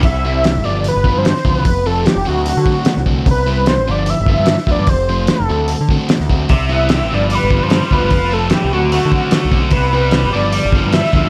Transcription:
<<
  \new Staff \with { instrumentName = "Analog synth lead" } { \time 4/4 \key c \major \tempo 4 = 148 e''4. d''8 b'8. c''8. b'8~ | b'8 a'8 g'8 fis'8 fis'4. r8 | b'4 c''8 d''8 e''4. d''8 | c''4 a'4. r4. |
e''4. d''8 b'8. c''8. b'8~ | b'8 a'8 g'8 fis'8 fis'4. r8 | b'4. d''4 r8 e''4 | }
  \new Staff \with { instrumentName = "Overdriven electric guitar" } { \time 4/4 \key c \major r8 <c g c' e'>8 r8 <d f b f'>8 r8 <d f b f'>8 r8 <d f b f'>8 | r8 <f a c' f'>8 r8 <d a c' fis'>8 r8 <d a c' fis'>8 r8 <d a c' fis'>8 | r8 <c g c' e'>8 r8 <d f b f'>8 r8 <d f b f'>8 r8 <d f b f'>8 | r8 <f a c' f'>8 r8 <d a c' fis'>8 r8 <d a c' fis'>8 r8 <d a c' fis'>8 |
r8 <c g c' e'>8 r8 <d f b f'>8 r8 <d f b f'>8 r8 <d f b f'>8 | r8 <f a c' f'>8 r8 <d a c' fis'>8 r8 <d a c' fis'>8 r8 <d a c' fis'>8 | r8 <c g c' e'>8 r8 <d f b d'>8 r8 <d f b d'>8 r8 <d f b d'>8 | }
  \new Staff \with { instrumentName = "Overdriven electric guitar" } { \clef bass \time 4/4 \key c \major r1 | r1 | r1 | r1 |
c8 b8 g'8 g,8 g8 f8 g8 f8 | f8 a8 e'8 d8 a8 d8 a8 d8 | c8 g8 g'8 g,8 g8 f8 g8 f8 | }
  \new Staff \with { instrumentName = "Picked electric bass" } { \clef bass \time 4/4 \key c \major c,4~ c,16 aes,,16 g,,8. g,,8 g,8 r16 d,16 c,16 | f,,4~ f,,16 f,,16 d,8. d8 r8 c,8. | c,4~ c,16 a,,16 g,,8. g,,8 g,8 r16 d,16 g,16 | f,,4~ f,,16 f,,16 d,8. d8 r8 d,8. |
c,4~ c,16 a,,16 g,,8. g,,8 g,8 r16 d,16 g,,16 | f,,4~ f,,16 c,16 d,8. d8 r8 b,,8. | c,4~ c,16 aes,,16 g,,8. g,,8 g,8 r16 d,16 g,16 | }
  \new DrumStaff \with { instrumentName = "Drums" } \drummode { \time 4/4 <hho bd>4 <hho sn>4 hho8 bd8 <hho sn>16 sn16 bd8 | <hho bd>4 <hho sn>4 hho8 bd8 <hho sn>16 sn16 bd8 | <hho bd>4 <hho sn>4 hho8 bd8 <hho sn>16 sn16 bd8 | <hho bd>4 <hho sn>4 hho8 bd8 <hho sn>16 sn16 bd8 |
<hho bd>4 <hho sn>4 hho8 bd8 <hho sn>8 bd8 | <hho bd>4 <hho sn>4 hho8 bd8 <hho sn>8 bd8 | <hho bd>4 <hho sn>4 hho8 bd8 <hho sn>16 sn16 bd8 | }
>>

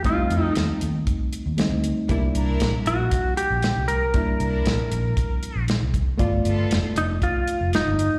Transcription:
<<
  \new Staff \with { instrumentName = "Electric slide guitar" } { \time 4/4 \key c \mixolydian \tempo 4 = 117 f'4 r2. | r4. fis'4 g'4 bes'8~ | bes'2. r4 | r4. ees'8 f'4 ees'4 | }
  \new Staff \with { instrumentName = "String section" } { \time 4/4 \key c \mixolydian <ees' g' c''>16 r16 <ees' g' a'>4 r2 r8 | <d' e' bes'>16 r16 <d' e' bes'>4 r2 r8 | <d' e' bes'>16 r16 <d' e' bes'>4 r2 r8 | <b f' a'>16 r16 <b f' a'>4 r2 r8 | }
  \new Staff \with { instrumentName = "Reed electric piano" } { \time 4/4 \key c \mixolydian <g a c' ees'>2. <g a c' ees'>4 | <g bes d' e'>1 | <g bes d' e'>1 | <a b f' d''>1 | }
  \new Staff \with { instrumentName = "Fingered electric bass" } { \clef bass \time 4/4 \key c \mixolydian r8 f,8 ees,16 r16 ees,8 r8. ees,8 d,8 r16 | c,8 c,8 bes,,16 r16 bes,,8 r8. bes,,8 c,8 r16 | r8 c,8 bes,,16 r16 bes,,8 r8. bes,,8 c,8 r16 | g,,8 g,,8 f,,16 r16 f,,8 r8. f,,8 g,,8 r16 | }
  \new DrumStaff \with { instrumentName = "Drums" } \drummode { \time 4/4 <hh bd>8 hh8 <hh sn>8 hh8 <hh bd>8 hh8 <hh sn>8 hh8 | <hh bd>8 hh8 <hh sn>8 hh8 <hh bd>8 hh8 <hh sn>8 hh8 | <hh bd>8 hh8 <hh sn>8 hh8 <hh bd>8 hh8 <hh sn>8 <hh bd>8 | <hh bd>8 hh8 <hh sn>8 hh8 <hh bd>8 hh8 <hh sn>8 hh8 | }
>>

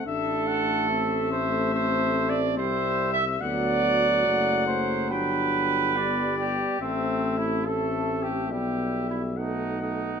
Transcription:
<<
  \new Staff \with { instrumentName = "Trumpet" } { \time 4/4 \key a \dorian \tempo 4 = 71 e''8 fis''8 e''2 e''4 | fis''2 g''4 d''4 | e''4 e''4 e''4 fis''4 | }
  \new Staff \with { instrumentName = "Trumpet" } { \time 4/4 \key a \dorian a'4. c''8 \tuplet 3/2 { c''4 d''8 c''4 e''8 } | d''4. c''8 b'4. g'8 | \tuplet 3/2 { c'4 e'8 a'4 g'8 g'4 e'8 } dis'8 dis'8 | }
  \new Staff \with { instrumentName = "French horn" } { \time 4/4 \key a \dorian d'4 c'2. | b4 a4 d'4 b4 | c'4 c'4 b4 b4 | }
  \new Staff \with { instrumentName = "Trombone" } { \clef bass \time 4/4 \key a \dorian a2. g4 | fis2. g4 | a4 a4 g4 a4 | }
  \new Staff \with { instrumentName = "Bass trombone" } { \clef bass \time 4/4 \key a \dorian a,,2. c,4 | d,4 fis,,4 g,,2 | a,,2 b,,2 | }
>>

